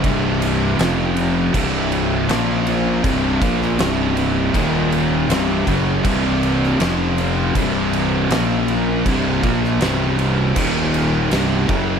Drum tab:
CC |x-x-x-x-x-x-x-x-|x-x-x-x-x-x-x-x-|x-x-x-x-x-x-x-x-|x-x-x-x-x-x-x-x-|
SD |----o-------o---|---oo-------o---|---oo-------o---|---oo-------o---|
BD |o-------o-------|o-o-----o-----o-|o-------o-------|o-o-----o-----o-|